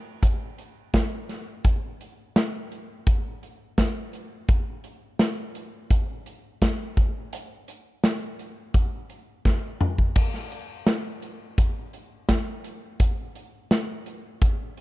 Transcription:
0.23 kick, closed hi-hat
0.58 closed hi-hat
0.94 kick, snare, closed hi-hat
1.29 snare, closed hi-hat
1.64 kick, closed hi-hat
2.01 closed hi-hat
2.36 snare, closed hi-hat
2.72 closed hi-hat
3.07 kick, closed hi-hat
3.43 closed hi-hat
3.78 kick, snare, closed hi-hat
4.13 closed hi-hat
4.48 kick, closed hi-hat
4.84 closed hi-hat
5.19 snare, closed hi-hat
5.55 closed hi-hat
5.91 kick, closed hi-hat
6.26 closed hi-hat
6.62 kick, snare, closed hi-hat
6.97 kick, closed hi-hat
7.33 closed hi-hat
7.68 closed hi-hat
8.04 snare, closed hi-hat
8.39 closed hi-hat
8.74 kick, closed hi-hat
9.10 closed hi-hat
9.45 kick, snare
9.81 mid tom
9.98 kick
10.16 kick, closed hi-hat, crash
10.34 snare
10.52 closed hi-hat
10.87 snare, closed hi-hat
11.22 closed hi-hat
11.58 kick, closed hi-hat
11.93 closed hi-hat
12.29 kick, snare, closed hi-hat
12.64 closed hi-hat
13.00 kick, closed hi-hat
13.35 closed hi-hat
13.71 snare, closed hi-hat
14.06 closed hi-hat
14.42 kick, closed hi-hat
14.77 closed hi-hat

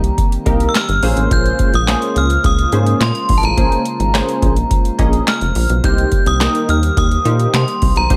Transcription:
Already playing: C2 D#3 G3 A#3 C4 G4 A#5
0.04 closed hi-hat
0.18 kick, closed hi-hat
0.32 closed hi-hat
0.46 C2 A#3 D#4 G4 A#4, kick, closed hi-hat
0.60 closed hi-hat
0.69 E6
0.75 F6, snare, clap, closed hi-hat
0.89 G1, closed hi-hat
1.02 A#1 C#3 G#3 A#3 C#4 F4 G#4 C5, open hi-hat
1.17 A1, closed hi-hat
1.31 A#1 G6, kick, closed hi-hat
1.46 closed hi-hat
1.59 kick, closed hi-hat
1.74 A#1 D#6, closed hi-hat
1.87 A#3 C#4 G#4 C5, snare, clap, closed hi-hat
2.02 closed hi-hat
2.16 C#2 F6, closed hi-hat
2.30 closed hi-hat
2.44 C#2 D#6, kick, closed hi-hat
2.59 closed hi-hat
2.72 G#2 A#3 C#4 G#4 C5, closed hi-hat
2.87 closed hi-hat
3.00 A#2 C6, snare, clap, closed hi-hat
3.15 closed hi-hat
3.29 A#1, kick, open hi-hat
3.38 A5
3.43 A1 A#5, closed hi-hat
3.57 A#1 A#3 C#4 G#4 C5, kick, closed hi-hat
3.72 closed hi-hat
3.85 closed hi-hat
4.00 G#1, closed hi-hat
4.14 A#3 C#4 G#4 C5, snare, clap, closed hi-hat
4.29 closed hi-hat
4.42 A#1, kick, closed hi-hat
4.56 closed hi-hat
4.71 kick, closed hi-hat
4.85 closed hi-hat
4.98 A#1 A#3 C#4 G#4 D#5, kick, closed hi-hat
5.13 closed hi-hat
5.27 F6, snare, clap, closed hi-hat
5.41 F1, closed hi-hat
5.55 A#1, open hi-hat
5.69 B1, closed hi-hat
5.83 C2 D#3 G3 A#3 D#4 G4 C5 G6, kick, closed hi-hat
5.98 closed hi-hat
6.12 kick, closed hi-hat
6.26 C2 D#6, closed hi-hat
6.40 A#3 D#4 G4 A#4, snare, clap, closed hi-hat
6.55 closed hi-hat
6.69 D#2 F6, closed hi-hat
6.83 closed hi-hat
6.97 D#2 D#6, kick, closed hi-hat
7.11 closed hi-hat
7.25 A#2 A#3 D#4 G4 C5, closed hi-hat
7.40 closed hi-hat
7.54 C3 C6, snare, clap, closed hi-hat
7.68 closed hi-hat
7.82 C2, kick, open hi-hat
7.96 B1 A#5, closed hi-hat
8.10 C2 A#3 D#4 G4 C5, kick, closed hi-hat

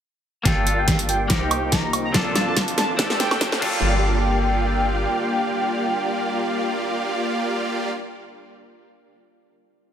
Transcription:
0.43 G1 G3 A#3 D4 F4 G4 D5 F5 G5, kick, snare, closed hi-hat, riser
0.47 A4
0.67 closed hi-hat
0.78 G5
0.88 kick, snare, closed hi-hat
0.99 closed hi-hat
1.09 G5, closed hi-hat
1.28 C2 A#3 D#4 G4 C5 D#5, kick, snare, closed hi-hat
1.41 G5
1.51 closed hi-hat, high woodblock
1.72 A#5, kick, snare, closed hi-hat
1.93 closed hi-hat, high woodblock
2.05 A#5
2.12 A#1 A#3 C4 D4 F4 A4 D5, kick, snare, closed hi-hat
2.17 A4
2.35 snare, closed hi-hat
2.47 A5
2.57 kick, snare, closed hi-hat
2.68 closed hi-hat
2.78 A5, snare, closed hi-hat
2.97 D2 C4 D4 G4 A4 D5, kick, snare, closed hi-hat
3.10 snare
3.20 G5, snare, closed hi-hat
3.31 snare, high woodblock
3.41 kick, snare, closed hi-hat
3.52 snare
3.59 G1 G3 A#3 D4 F4 G4 D5 F5 G5, kick, crash
3.65 A4

